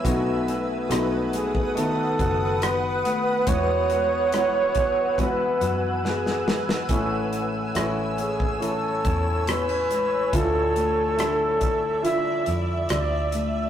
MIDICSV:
0, 0, Header, 1, 7, 480
1, 0, Start_track
1, 0, Key_signature, 3, "major"
1, 0, Tempo, 857143
1, 25, Time_signature, 4, 2, 24, 8
1, 7670, End_track
2, 0, Start_track
2, 0, Title_t, "Ambient pad"
2, 0, Program_c, 0, 92
2, 0, Note_on_c, 0, 71, 71
2, 23, Note_on_c, 0, 78, 72
2, 27, Note_on_c, 0, 87, 84
2, 1926, Note_off_c, 0, 87, 0
2, 1954, Note_on_c, 0, 88, 85
2, 1957, Note_on_c, 0, 80, 65
2, 3841, Note_off_c, 0, 78, 0
2, 3845, Note_off_c, 0, 71, 0
2, 3865, Note_on_c, 0, 73, 70
2, 5765, Note_off_c, 0, 73, 0
2, 5768, Note_off_c, 0, 80, 0
2, 5785, Note_on_c, 0, 74, 75
2, 5789, Note_on_c, 0, 76, 65
2, 7670, Note_off_c, 0, 74, 0
2, 7670, Note_off_c, 0, 76, 0
2, 7670, Note_off_c, 0, 88, 0
2, 7670, End_track
3, 0, Start_track
3, 0, Title_t, "Flugelhorn"
3, 0, Program_c, 1, 56
3, 761, Note_on_c, 1, 68, 80
3, 993, Note_on_c, 1, 69, 95
3, 1001, Note_off_c, 1, 68, 0
3, 1472, Note_on_c, 1, 71, 98
3, 1481, Note_off_c, 1, 69, 0
3, 1949, Note_on_c, 1, 73, 106
3, 1958, Note_off_c, 1, 71, 0
3, 2906, Note_on_c, 1, 71, 91
3, 2915, Note_off_c, 1, 73, 0
3, 3234, Note_off_c, 1, 71, 0
3, 3399, Note_on_c, 1, 68, 75
3, 3729, Note_off_c, 1, 68, 0
3, 4595, Note_on_c, 1, 68, 73
3, 4813, Note_off_c, 1, 68, 0
3, 4835, Note_on_c, 1, 69, 84
3, 5318, Note_on_c, 1, 71, 96
3, 5327, Note_off_c, 1, 69, 0
3, 5795, Note_on_c, 1, 69, 92
3, 5804, Note_off_c, 1, 71, 0
3, 6745, Note_off_c, 1, 69, 0
3, 6748, Note_on_c, 1, 76, 106
3, 7053, Note_off_c, 1, 76, 0
3, 7228, Note_on_c, 1, 74, 94
3, 7564, Note_off_c, 1, 74, 0
3, 7670, End_track
4, 0, Start_track
4, 0, Title_t, "Grand piano"
4, 0, Program_c, 2, 0
4, 0, Control_c, 2, 64, 127
4, 22, Note_on_c, 2, 59, 70
4, 23, Note_on_c, 2, 57, 75
4, 25, Note_on_c, 2, 63, 71
4, 25, Note_on_c, 2, 66, 92
4, 33, Control_c, 2, 64, 0
4, 124, Control_c, 2, 64, 127
4, 479, Note_off_c, 2, 59, 0
4, 480, Note_off_c, 2, 57, 0
4, 481, Note_off_c, 2, 63, 0
4, 481, Note_off_c, 2, 66, 0
4, 500, Note_on_c, 2, 57, 82
4, 500, Note_on_c, 2, 63, 73
4, 502, Note_on_c, 2, 71, 84
4, 503, Note_on_c, 2, 59, 72
4, 958, Note_off_c, 2, 57, 0
4, 958, Note_off_c, 2, 63, 0
4, 959, Note_off_c, 2, 71, 0
4, 960, Note_off_c, 2, 59, 0
4, 979, Note_on_c, 2, 57, 70
4, 981, Note_on_c, 2, 63, 59
4, 982, Note_on_c, 2, 69, 77
4, 983, Note_on_c, 2, 59, 58
4, 1894, Note_off_c, 2, 57, 0
4, 1895, Note_off_c, 2, 63, 0
4, 1895, Note_off_c, 2, 69, 0
4, 1896, Note_off_c, 2, 59, 0
4, 1941, Note_on_c, 2, 56, 67
4, 1941, Note_on_c, 2, 59, 56
4, 1942, Note_on_c, 2, 47, 58
4, 1944, Note_on_c, 2, 64, 64
4, 1946, Note_on_c, 2, 66, 77
4, 1953, Control_c, 2, 64, 0
4, 2062, Control_c, 2, 64, 127
4, 2399, Note_off_c, 2, 56, 0
4, 2399, Note_off_c, 2, 59, 0
4, 2400, Note_off_c, 2, 64, 0
4, 2401, Note_off_c, 2, 66, 0
4, 2423, Note_on_c, 2, 56, 61
4, 2424, Note_on_c, 2, 64, 55
4, 2425, Note_on_c, 2, 59, 51
4, 2428, Note_on_c, 2, 66, 67
4, 2641, Note_off_c, 2, 47, 0
4, 2880, Note_off_c, 2, 56, 0
4, 2880, Note_off_c, 2, 64, 0
4, 2881, Note_off_c, 2, 59, 0
4, 2882, Note_off_c, 2, 66, 0
4, 2899, Note_on_c, 2, 59, 56
4, 2900, Note_on_c, 2, 64, 51
4, 2901, Note_on_c, 2, 56, 61
4, 2903, Note_on_c, 2, 66, 72
4, 3814, Note_off_c, 2, 59, 0
4, 3814, Note_off_c, 2, 64, 0
4, 3815, Note_off_c, 2, 56, 0
4, 3816, Note_off_c, 2, 66, 0
4, 3861, Note_on_c, 2, 57, 75
4, 3862, Note_on_c, 2, 61, 72
4, 3863, Note_on_c, 2, 45, 63
4, 3863, Note_on_c, 2, 64, 73
4, 3864, Note_on_c, 2, 52, 69
4, 3864, Note_on_c, 2, 68, 82
4, 3871, Control_c, 2, 64, 0
4, 3963, Control_c, 2, 64, 127
4, 4319, Note_off_c, 2, 57, 0
4, 4319, Note_off_c, 2, 61, 0
4, 4320, Note_off_c, 2, 64, 0
4, 4320, Note_off_c, 2, 68, 0
4, 4339, Note_on_c, 2, 57, 71
4, 4340, Note_on_c, 2, 61, 67
4, 4342, Note_on_c, 2, 64, 70
4, 4343, Note_on_c, 2, 68, 78
4, 4561, Note_off_c, 2, 45, 0
4, 4562, Note_off_c, 2, 52, 0
4, 4798, Note_off_c, 2, 57, 0
4, 4798, Note_off_c, 2, 61, 0
4, 4799, Note_off_c, 2, 64, 0
4, 4800, Note_off_c, 2, 68, 0
4, 4814, Note_on_c, 2, 57, 63
4, 4819, Note_on_c, 2, 61, 61
4, 4819, Note_on_c, 2, 64, 58
4, 5731, Note_off_c, 2, 57, 0
4, 5734, Note_off_c, 2, 61, 0
4, 5734, Note_off_c, 2, 64, 0
4, 5783, Note_on_c, 2, 57, 58
4, 5783, Note_on_c, 2, 62, 65
4, 5783, Note_on_c, 2, 64, 60
4, 5785, Note_on_c, 2, 45, 56
4, 5787, Note_on_c, 2, 65, 70
4, 5792, Control_c, 2, 64, 0
4, 5901, Control_c, 2, 64, 127
4, 6240, Note_off_c, 2, 57, 0
4, 6240, Note_off_c, 2, 62, 0
4, 6240, Note_off_c, 2, 64, 0
4, 6242, Note_off_c, 2, 65, 0
4, 6254, Note_on_c, 2, 57, 65
4, 6256, Note_on_c, 2, 62, 59
4, 6256, Note_on_c, 2, 69, 70
4, 6257, Note_on_c, 2, 64, 58
4, 6482, Note_off_c, 2, 45, 0
4, 6715, Note_off_c, 2, 57, 0
4, 6716, Note_off_c, 2, 62, 0
4, 6716, Note_off_c, 2, 69, 0
4, 6717, Note_off_c, 2, 64, 0
4, 6734, Note_on_c, 2, 57, 59
4, 6734, Note_on_c, 2, 62, 59
4, 6735, Note_on_c, 2, 64, 60
4, 6737, Note_on_c, 2, 65, 74
4, 7651, Note_off_c, 2, 57, 0
4, 7652, Note_off_c, 2, 62, 0
4, 7652, Note_off_c, 2, 64, 0
4, 7653, Note_off_c, 2, 65, 0
4, 7670, End_track
5, 0, Start_track
5, 0, Title_t, "Steel-string acoustic guitar"
5, 0, Program_c, 3, 25
5, 0, Note_on_c, 3, 52, 59
5, 0, Note_on_c, 3, 56, 60
5, 0, Note_on_c, 3, 59, 64
5, 26, Note_on_c, 3, 47, 81
5, 31, Note_on_c, 3, 66, 66
5, 73, Note_off_c, 3, 52, 0
5, 75, Note_off_c, 3, 56, 0
5, 269, Note_on_c, 3, 57, 57
5, 286, Note_off_c, 3, 59, 0
5, 502, Note_off_c, 3, 66, 0
5, 504, Note_on_c, 3, 66, 65
5, 750, Note_on_c, 3, 59, 53
5, 989, Note_on_c, 3, 51, 58
5, 1226, Note_off_c, 3, 66, 0
5, 1228, Note_on_c, 3, 66, 61
5, 1465, Note_off_c, 3, 59, 0
5, 1467, Note_on_c, 3, 59, 59
5, 1700, Note_off_c, 3, 57, 0
5, 1707, Note_on_c, 3, 57, 54
5, 1944, Note_on_c, 3, 40, 80
5, 1945, Note_off_c, 3, 47, 0
5, 1946, Note_off_c, 3, 66, 0
5, 1949, Note_on_c, 3, 66, 67
5, 1994, Note_off_c, 3, 57, 0
5, 1995, Note_off_c, 3, 51, 0
5, 2183, Note_on_c, 3, 56, 60
5, 2414, Note_off_c, 3, 66, 0
5, 2421, Note_on_c, 3, 66, 60
5, 2660, Note_off_c, 3, 59, 0
5, 2662, Note_on_c, 3, 59, 56
5, 2902, Note_on_c, 3, 52, 56
5, 3137, Note_off_c, 3, 66, 0
5, 3143, Note_on_c, 3, 66, 58
5, 3373, Note_off_c, 3, 59, 0
5, 3380, Note_on_c, 3, 59, 53
5, 3617, Note_off_c, 3, 56, 0
5, 3620, Note_on_c, 3, 56, 54
5, 3861, Note_on_c, 3, 45, 80
5, 3862, Note_off_c, 3, 66, 0
5, 3864, Note_off_c, 3, 40, 0
5, 3864, Note_on_c, 3, 64, 66
5, 3910, Note_off_c, 3, 59, 0
5, 4340, Note_off_c, 3, 64, 0
5, 4342, Note_on_c, 3, 64, 65
5, 4585, Note_on_c, 3, 61, 53
5, 4822, Note_off_c, 3, 52, 0
5, 4824, Note_on_c, 3, 52, 54
5, 5063, Note_off_c, 3, 64, 0
5, 5065, Note_on_c, 3, 64, 61
5, 5302, Note_off_c, 3, 61, 0
5, 5304, Note_on_c, 3, 59, 56
5, 5425, Note_off_c, 3, 59, 0
5, 5425, Note_on_c, 3, 61, 48
5, 5545, Note_off_c, 3, 56, 0
5, 5547, Note_on_c, 3, 56, 54
5, 5783, Note_off_c, 3, 45, 0
5, 5787, Note_off_c, 3, 64, 0
5, 5787, Note_on_c, 3, 50, 75
5, 5790, Note_on_c, 3, 64, 70
5, 5833, Note_off_c, 3, 61, 0
5, 5834, Note_off_c, 3, 56, 0
5, 6023, Note_on_c, 3, 57, 57
5, 6260, Note_off_c, 3, 64, 0
5, 6262, Note_on_c, 3, 64, 67
5, 6507, Note_on_c, 3, 62, 52
5, 6524, Note_off_c, 3, 52, 0
5, 6747, Note_on_c, 3, 53, 60
5, 6986, Note_off_c, 3, 64, 0
5, 6988, Note_on_c, 3, 64, 65
5, 7222, Note_off_c, 3, 62, 0
5, 7229, Note_on_c, 3, 62, 60
5, 7467, Note_off_c, 3, 57, 0
5, 7469, Note_on_c, 3, 57, 59
5, 7670, Note_off_c, 3, 50, 0
5, 7670, Note_off_c, 3, 53, 0
5, 7670, Note_off_c, 3, 57, 0
5, 7670, Note_off_c, 3, 62, 0
5, 7670, Note_off_c, 3, 64, 0
5, 7670, End_track
6, 0, Start_track
6, 0, Title_t, "Fingered electric bass"
6, 0, Program_c, 4, 33
6, 27, Note_on_c, 4, 35, 90
6, 483, Note_off_c, 4, 35, 0
6, 504, Note_on_c, 4, 35, 87
6, 1202, Note_off_c, 4, 35, 0
6, 1231, Note_on_c, 4, 30, 88
6, 1685, Note_off_c, 4, 30, 0
6, 1944, Note_on_c, 4, 40, 85
6, 3002, Note_off_c, 4, 40, 0
6, 3143, Note_on_c, 4, 42, 76
6, 3842, Note_off_c, 4, 42, 0
6, 3859, Note_on_c, 4, 33, 87
6, 4319, Note_off_c, 4, 33, 0
6, 4344, Note_on_c, 4, 33, 83
6, 5042, Note_off_c, 4, 33, 0
6, 5065, Note_on_c, 4, 40, 80
6, 5522, Note_off_c, 4, 40, 0
6, 5787, Note_on_c, 4, 38, 91
6, 6843, Note_off_c, 4, 38, 0
6, 6985, Note_on_c, 4, 41, 83
6, 7208, Note_off_c, 4, 41, 0
6, 7226, Note_on_c, 4, 38, 87
6, 7670, Note_off_c, 4, 38, 0
6, 7670, End_track
7, 0, Start_track
7, 0, Title_t, "Drums"
7, 27, Note_on_c, 9, 36, 99
7, 30, Note_on_c, 9, 42, 94
7, 83, Note_off_c, 9, 36, 0
7, 86, Note_off_c, 9, 42, 0
7, 270, Note_on_c, 9, 42, 65
7, 326, Note_off_c, 9, 42, 0
7, 508, Note_on_c, 9, 42, 87
7, 515, Note_on_c, 9, 37, 96
7, 564, Note_off_c, 9, 42, 0
7, 571, Note_off_c, 9, 37, 0
7, 746, Note_on_c, 9, 42, 66
7, 802, Note_off_c, 9, 42, 0
7, 866, Note_on_c, 9, 36, 79
7, 922, Note_off_c, 9, 36, 0
7, 991, Note_on_c, 9, 42, 73
7, 1047, Note_off_c, 9, 42, 0
7, 1228, Note_on_c, 9, 36, 79
7, 1229, Note_on_c, 9, 42, 63
7, 1284, Note_off_c, 9, 36, 0
7, 1285, Note_off_c, 9, 42, 0
7, 1467, Note_on_c, 9, 42, 86
7, 1474, Note_on_c, 9, 37, 108
7, 1523, Note_off_c, 9, 42, 0
7, 1530, Note_off_c, 9, 37, 0
7, 1709, Note_on_c, 9, 42, 76
7, 1765, Note_off_c, 9, 42, 0
7, 1942, Note_on_c, 9, 42, 98
7, 1944, Note_on_c, 9, 36, 105
7, 1998, Note_off_c, 9, 42, 0
7, 2000, Note_off_c, 9, 36, 0
7, 2183, Note_on_c, 9, 42, 64
7, 2239, Note_off_c, 9, 42, 0
7, 2422, Note_on_c, 9, 42, 81
7, 2429, Note_on_c, 9, 37, 87
7, 2478, Note_off_c, 9, 42, 0
7, 2485, Note_off_c, 9, 37, 0
7, 2658, Note_on_c, 9, 42, 65
7, 2663, Note_on_c, 9, 36, 87
7, 2714, Note_off_c, 9, 42, 0
7, 2719, Note_off_c, 9, 36, 0
7, 2901, Note_on_c, 9, 36, 77
7, 2905, Note_on_c, 9, 42, 76
7, 2957, Note_off_c, 9, 36, 0
7, 2961, Note_off_c, 9, 42, 0
7, 3143, Note_on_c, 9, 42, 67
7, 3199, Note_off_c, 9, 42, 0
7, 3389, Note_on_c, 9, 38, 51
7, 3445, Note_off_c, 9, 38, 0
7, 3508, Note_on_c, 9, 38, 52
7, 3564, Note_off_c, 9, 38, 0
7, 3628, Note_on_c, 9, 38, 86
7, 3684, Note_off_c, 9, 38, 0
7, 3747, Note_on_c, 9, 38, 80
7, 3803, Note_off_c, 9, 38, 0
7, 3858, Note_on_c, 9, 42, 97
7, 3860, Note_on_c, 9, 36, 98
7, 3914, Note_off_c, 9, 42, 0
7, 3916, Note_off_c, 9, 36, 0
7, 4103, Note_on_c, 9, 42, 61
7, 4159, Note_off_c, 9, 42, 0
7, 4341, Note_on_c, 9, 42, 84
7, 4348, Note_on_c, 9, 37, 96
7, 4397, Note_off_c, 9, 42, 0
7, 4404, Note_off_c, 9, 37, 0
7, 4582, Note_on_c, 9, 42, 57
7, 4638, Note_off_c, 9, 42, 0
7, 4704, Note_on_c, 9, 36, 79
7, 4760, Note_off_c, 9, 36, 0
7, 4829, Note_on_c, 9, 42, 73
7, 4885, Note_off_c, 9, 42, 0
7, 5067, Note_on_c, 9, 36, 82
7, 5067, Note_on_c, 9, 42, 61
7, 5123, Note_off_c, 9, 36, 0
7, 5123, Note_off_c, 9, 42, 0
7, 5306, Note_on_c, 9, 42, 92
7, 5313, Note_on_c, 9, 37, 106
7, 5362, Note_off_c, 9, 42, 0
7, 5369, Note_off_c, 9, 37, 0
7, 5547, Note_on_c, 9, 42, 65
7, 5603, Note_off_c, 9, 42, 0
7, 5785, Note_on_c, 9, 36, 101
7, 5786, Note_on_c, 9, 42, 93
7, 5841, Note_off_c, 9, 36, 0
7, 5842, Note_off_c, 9, 42, 0
7, 6026, Note_on_c, 9, 42, 61
7, 6082, Note_off_c, 9, 42, 0
7, 6264, Note_on_c, 9, 42, 83
7, 6272, Note_on_c, 9, 37, 94
7, 6320, Note_off_c, 9, 42, 0
7, 6328, Note_off_c, 9, 37, 0
7, 6501, Note_on_c, 9, 42, 65
7, 6504, Note_on_c, 9, 36, 90
7, 6557, Note_off_c, 9, 42, 0
7, 6560, Note_off_c, 9, 36, 0
7, 6746, Note_on_c, 9, 42, 70
7, 6802, Note_off_c, 9, 42, 0
7, 6979, Note_on_c, 9, 42, 66
7, 7035, Note_off_c, 9, 42, 0
7, 7218, Note_on_c, 9, 42, 79
7, 7226, Note_on_c, 9, 37, 108
7, 7274, Note_off_c, 9, 42, 0
7, 7282, Note_off_c, 9, 37, 0
7, 7461, Note_on_c, 9, 42, 67
7, 7517, Note_off_c, 9, 42, 0
7, 7670, End_track
0, 0, End_of_file